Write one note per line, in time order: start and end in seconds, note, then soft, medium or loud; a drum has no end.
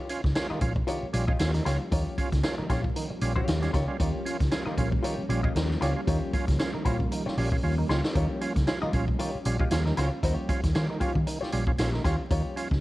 0.00 12.80 F3 medium
0.00 12.80 G3 medium
0.00 12.80 A#3 medium
0.00 12.80 C#4 loud
0.09 0.21 C#4 medium
0.09 0.21 F4 medium
0.09 closed hi-hat medium
0.24 0.33 C#2 medium
0.24 muted hollow-body jazz guitar stroke soft
0.24 kick medium
0.24 snare soft
0.35 0.47 C#4 medium
0.35 0.48 F4 medium
0.35 muted hollow-body jazz guitar stroke soft
0.35 snare loud
0.35 closed hi-hat medium
0.50 0.59 D#3 medium
0.50 0.60 F4 medium
0.50 0.61 G4 medium
0.50 0.62 D#5 medium
0.50 muted fingered electric bass stroke soft
0.61 0.81 A#1 medium
0.61 0.73 C#4 medium
0.61 0.73 F4 medium
0.61 muted hollow-body jazz guitar stroke soft
0.61 kick medium
0.61 closed hi-hat medium
0.76 muted hollow-body jazz guitar stroke soft
0.76 kick medium
0.87 0.99 D#3 medium
0.87 1.05 F4 medium
0.87 1.05 G4 medium
0.87 1.06 C#5 loud
0.87 closed hi-hat medium
1.03 muted fingered electric bass stroke soft
1.13 1.33 A#1 medium
1.13 1.25 G3 medium
1.13 1.25 C#4 medium
1.13 1.25 F4 medium
1.13 muted hollow-body jazz guitar stroke soft
1.13 closed hi-hat medium
1.27 1.33 C#4 soft
1.27 1.33 F4 soft
1.27 1.39 F4 medium
1.27 1.39 G4 medium
1.27 1.39 D#5 medium
1.27 kick loud
1.39 1.59 D#2 medium
1.39 1.51 C#4 medium
1.39 1.51 F4 medium
1.39 muted hollow-body jazz guitar stroke soft
1.39 snare loud
1.39 closed hi-hat medium
1.54 1.63 D#3 medium
1.54 muted hollow-body jazz guitar stroke soft
1.54 snare soft
1.54 closed hi-hat medium
1.65 1.76 C#2 medium
1.65 1.77 C#4 medium
1.65 1.83 F4 medium
1.65 1.77 F4 medium
1.65 1.80 G4 medium
1.65 1.79 C#5 loud
1.65 snare soft
1.65 closed hi-hat medium
1.80 muted hollow-body jazz guitar stroke soft
1.91 2.03 D#2 loud
1.91 2.04 D#3 medium
1.91 2.16 F4 medium
1.91 2.16 G4 medium
1.91 2.16 C#5 medium
1.91 kick loud
1.91 closed hi-hat medium
2.18 2.29 C#4 medium
2.18 2.30 F4 medium
2.18 kick medium
2.18 closed hi-hat medium
2.32 2.41 C#2 medium
2.32 muted hollow-body jazz guitar stroke soft
2.32 kick medium
2.32 snare soft
2.32 closed hi-hat soft
2.43 2.55 C#4 medium
2.43 2.55 F4 medium
2.43 muted hollow-body jazz guitar stroke soft
2.43 snare loud
2.43 closed hi-hat medium
2.58 2.67 D#3 medium
2.58 muted hollow-body jazz guitar stroke soft
2.58 muted fingered electric bass stroke soft
2.70 2.89 A#1 medium
2.70 2.81 C#4 medium
2.70 2.87 F4 medium
2.70 2.82 F4 medium
2.70 2.84 G4 medium
2.70 2.83 C#5 medium
2.70 kick medium
2.70 snare soft
2.70 closed hi-hat medium
2.84 muted hollow-body jazz guitar stroke soft
2.84 kick medium
2.95 3.08 D#3 medium
2.95 muted hollow-body jazz guitar stroke soft
2.95 closed hi-hat medium
3.10 muted fingered electric bass stroke soft
3.10 muted hollow-body jazz guitar stroke soft
3.21 3.41 A#1 medium
3.21 3.33 G3 medium
3.21 3.33 C#4 medium
3.21 3.34 F4 medium
3.21 closed hi-hat medium
3.36 3.41 C#4 soft
3.36 3.41 F4 soft
3.36 3.56 F4 medium
3.36 3.56 G4 medium
3.36 3.55 C#5 medium
3.36 kick medium
3.47 3.67 D#2 medium
3.47 snare loud
3.47 closed hi-hat loud
3.62 3.71 G3 medium
3.62 3.71 C#4 medium
3.62 3.72 F4 medium
3.62 muted hollow-body jazz guitar stroke soft
3.62 snare soft
3.62 closed hi-hat soft
3.73 3.85 C#2 medium
3.73 3.85 D#3 medium
3.73 3.91 F4 medium
3.73 3.88 G4 medium
3.73 3.87 C#5 loud
3.73 kick medium
3.73 snare soft
3.73 closed hi-hat medium
3.88 3.97 G3 medium
3.88 3.97 C#4 medium
3.88 3.97 F4 medium
3.88 muted hollow-body jazz guitar stroke soft
4.00 4.11 D#2 loud
4.00 4.11 D#3 medium
4.00 4.24 F4 medium
4.00 4.24 G4 medium
4.00 4.24 C#5 medium
4.00 kick medium
4.00 closed hi-hat medium
4.25 4.37 C#4 medium
4.25 4.38 F4 medium
4.25 closed hi-hat medium
4.40 4.49 C#2 medium
4.40 muted hollow-body jazz guitar stroke soft
4.40 kick medium
4.40 snare soft
4.40 closed hi-hat soft
4.51 4.63 C#4 medium
4.51 4.64 F4 medium
4.51 muted hollow-body jazz guitar stroke soft
4.51 snare loud
4.51 closed hi-hat medium
4.66 4.76 D#3 medium
4.66 4.76 F4 medium
4.66 4.77 G4 medium
4.66 4.78 D#5 medium
4.66 muted fingered electric bass stroke soft
4.77 4.97 A#1 medium
4.77 4.89 C#4 medium
4.77 4.90 F4 medium
4.77 muted hollow-body jazz guitar stroke soft
4.77 kick medium
4.77 closed hi-hat medium
4.91 muted hollow-body jazz guitar stroke medium
4.91 kick medium
5.03 5.16 D#3 medium
5.03 5.21 F4 medium
5.03 5.21 G4 medium
5.03 5.22 C#5 loud
5.03 closed hi-hat medium
5.18 muted fingered electric bass stroke soft
5.29 5.48 A#1 medium
5.29 5.41 G3 medium
5.29 5.41 C#4 medium
5.29 5.42 F4 medium
5.29 muted hollow-body jazz guitar stroke medium
5.29 closed hi-hat medium
5.43 5.49 C#4 soft
5.43 5.54 F4 medium
5.43 5.49 F4 soft
5.43 5.54 G4 medium
5.43 5.55 D#5 medium
5.43 kick medium
5.55 5.75 D#2 medium
5.55 5.68 D#3 medium
5.55 muted hollow-body jazz guitar stroke soft
5.55 snare loud
5.55 closed hi-hat medium
5.70 muted hollow-body jazz guitar stroke soft
5.70 snare soft
5.81 5.92 C#2 medium
5.81 5.93 G3 medium
5.81 5.94 C#4 medium
5.81 5.99 F4 medium
5.81 5.94 F4 medium
5.81 5.95 G4 loud
5.81 5.94 C#5 loud
5.81 snare soft
5.81 closed hi-hat medium
5.96 6.01 C#4 soft
5.96 6.01 F4 soft
5.96 muted hollow-body jazz guitar stroke medium
6.07 6.18 D#2 loud
6.07 6.19 D#3 medium
6.07 6.31 F4 medium
6.07 6.32 G4 loud
6.07 6.32 C#5 medium
6.07 kick loud
6.07 closed hi-hat medium
6.33 6.45 C#4 medium
6.33 6.46 F4 medium
6.33 kick loud
6.33 closed hi-hat medium
6.47 6.57 C#2 medium
6.47 muted hollow-body jazz guitar stroke soft
6.47 kick loud
6.47 snare soft
6.47 closed hi-hat medium
6.59 6.71 C#4 medium
6.59 6.71 F4 medium
6.59 muted hollow-body jazz guitar stroke soft
6.59 snare loud
6.59 closed hi-hat medium
6.74 6.83 D#3 medium
6.74 muted hollow-body jazz guitar stroke medium
6.74 muted fingered electric bass stroke soft
6.85 7.05 A#1 medium
6.85 6.97 C#4 medium
6.85 7.06 F4 medium
6.85 6.97 F4 medium
6.85 7.00 G4 loud
6.85 6.99 C#5 medium
6.85 kick medium
6.85 closed hi-hat medium
7.00 muted hollow-body jazz guitar stroke soft
7.00 kick medium
7.11 7.23 D#3 medium
7.11 muted hollow-body jazz guitar stroke soft
7.11 closed hi-hat medium
7.26 7.36 F4 medium
7.26 7.37 G4 medium
7.26 7.37 C#5 medium
7.26 muted fingered electric bass stroke soft
7.26 snare soft
7.37 7.57 A#1 medium
7.37 7.49 G3 medium
7.37 7.49 C#4 medium
7.37 7.50 F4 medium
7.37 muted hollow-body jazz guitar stroke soft
7.37 open hi-hat medium
7.52 7.57 C#4 soft
7.52 7.57 F4 soft
7.52 muted hollow-body jazz guitar stroke soft
7.52 kick loud
7.63 7.83 D#2 medium
7.63 7.75 C#4 medium
7.63 7.75 F4 medium
7.78 7.87 D#3 medium
7.78 muted hollow-body jazz guitar stroke soft
7.89 8.00 C#2 medium
7.89 8.01 C#4 medium
7.89 8.07 F4 medium
7.89 8.01 F4 medium
7.89 8.04 G4 medium
7.89 8.03 C#5 medium
7.89 snare medium
8.04 muted hollow-body jazz guitar stroke soft
8.04 snare loud
8.15 8.26 D#2 medium
8.15 8.27 D#3 medium
8.15 8.39 F4 medium
8.15 8.40 G4 medium
8.15 8.40 C#5 medium
8.15 kick medium
8.15 closed hi-hat medium
8.41 8.53 C#4 medium
8.41 8.53 F4 medium
8.41 closed hi-hat medium
8.56 8.65 C#2 medium
8.56 muted hollow-body jazz guitar stroke soft
8.56 kick medium
8.56 snare soft
8.56 closed hi-hat medium
8.67 8.79 C#4 medium
8.67 8.79 F4 medium
8.67 muted hollow-body jazz guitar stroke soft
8.67 snare loud
8.67 closed hi-hat medium
8.82 8.91 D#3 medium
8.82 8.93 F4 medium
8.82 8.93 G4 medium
8.82 8.94 D#5 medium
8.82 muted fingered electric bass stroke soft
8.93 9.13 A#1 medium
8.93 9.05 C#4 medium
8.93 9.05 F4 medium
8.93 muted hollow-body jazz guitar stroke soft
8.93 kick medium
8.93 closed hi-hat medium
9.08 muted hollow-body jazz guitar stroke soft
9.08 kick medium
9.19 9.31 D#3 medium
9.19 9.37 F4 medium
9.19 9.37 G4 medium
9.19 9.37 C#5 medium
9.19 closed hi-hat medium
9.35 muted fingered electric bass stroke soft
9.45 9.65 A#1 medium
9.45 9.57 G3 medium
9.45 9.57 C#4 medium
9.45 9.57 F4 medium
9.45 muted hollow-body jazz guitar stroke soft
9.45 closed hi-hat medium
9.59 9.65 C#4 soft
9.59 9.65 F4 soft
9.59 9.70 F4 medium
9.59 9.70 G4 medium
9.59 9.71 D#5 medium
9.59 kick loud
9.71 9.91 D#2 medium
9.71 9.83 C#4 medium
9.71 9.83 F4 medium
9.71 muted hollow-body jazz guitar stroke soft
9.71 snare loud
9.71 closed hi-hat loud
9.86 9.95 D#3 medium
9.86 muted hollow-body jazz guitar stroke medium
9.86 snare soft
9.97 10.08 C#2 medium
9.97 10.09 C#4 medium
9.97 10.18 F4 medium
9.97 10.09 F4 medium
9.97 10.11 G4 medium
9.97 10.10 C#5 loud
9.97 snare soft
9.97 closed hi-hat medium
10.12 muted hollow-body jazz guitar stroke soft
10.23 10.34 D#2 loud
10.23 10.35 D#3 medium
10.23 10.47 F4 medium
10.23 10.48 G4 medium
10.23 10.48 C#5 medium
10.23 kick medium
10.23 closed hi-hat medium
10.49 10.61 C#4 medium
10.49 10.61 F4 medium
10.49 kick loud
10.49 closed hi-hat medium
10.63 10.72 D#2 medium
10.63 muted hollow-body jazz guitar stroke soft
10.63 kick medium
10.63 snare soft
10.63 closed hi-hat medium
10.75 10.86 D#3 loud
10.75 10.87 C#4 medium
10.75 10.87 F4 medium
10.75 muted hollow-body jazz guitar stroke soft
10.75 snare loud
10.75 closed hi-hat medium
10.90 10.99 D#3 soft
10.90 muted hollow-body jazz guitar stroke soft
11.00 11.13 C#4 medium
11.00 11.18 F4 medium
11.00 11.13 F4 medium
11.00 11.15 G4 loud
11.00 11.14 C#5 medium
11.00 muted fingered electric bass stroke soft
11.00 kick medium
11.00 closed hi-hat medium
11.15 11.24 D#3 medium
11.15 muted hollow-body jazz guitar stroke soft
11.15 kick medium
11.26 11.39 D#3 medium
11.26 muted hollow-body jazz guitar stroke soft
11.26 closed hi-hat medium
11.41 11.52 F4 medium
11.41 11.52 G4 medium
11.41 11.52 C#5 medium
11.41 muted fingered electric bass stroke soft
11.41 snare soft
11.52 11.72 A#1 loud
11.52 11.64 G3 medium
11.52 11.64 C#4 medium
11.52 11.65 F4 medium
11.52 muted hollow-body jazz guitar stroke soft
11.52 closed hi-hat medium
11.67 11.72 C#4 soft
11.67 11.72 F4 soft
11.67 muted hollow-body jazz guitar stroke medium
11.67 kick medium
11.78 11.98 A#1 loud
11.78 11.90 C#4 medium
11.78 11.91 F4 medium
11.78 snare loud
11.78 closed hi-hat medium
11.94 12.03 D#3 medium
11.94 muted hollow-body jazz guitar stroke soft
11.94 snare soft
12.04 12.16 D#2 medium
12.04 12.16 C#4 medium
12.04 12.22 F4 medium
12.04 12.17 F4 medium
12.04 12.19 G4 medium
12.04 12.18 C#5 medium
12.04 kick medium
12.04 snare soft
12.04 closed hi-hat medium
12.19 muted hollow-body jazz guitar stroke medium
12.31 12.42 D#2 loud
12.31 12.43 D#3 medium
12.31 12.55 F4 medium
12.31 12.55 G4 medium
12.31 12.55 C#5 medium
12.31 kick loud
12.31 closed hi-hat loud
12.56 12.68 C#4 medium
12.56 12.68 F4 medium
12.56 closed hi-hat medium
12.71 12.80 C#2 medium
12.71 muted hollow-body jazz guitar stroke soft
12.71 kick medium
12.71 snare soft